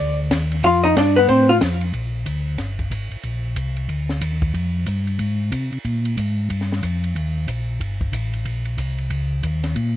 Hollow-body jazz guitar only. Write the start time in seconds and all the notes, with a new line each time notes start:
Already playing: D5
0.64 F4 F5
0.84 D#4 D#5
0.97 D4 D5
1.16 B3 B4
1.29 C4 C5
1.49 F4 F5